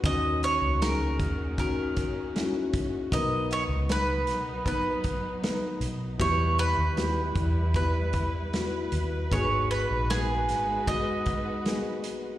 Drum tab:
HH |xxxxxxxx|xxxxxxxx|xxxxxxxx|xxxxxxxx|
SD |--o---o-|--oo--o-|--o---o-|--oo--o-|
BD |o--ooo-o|o---oo--|o--ooo--|o---oo--|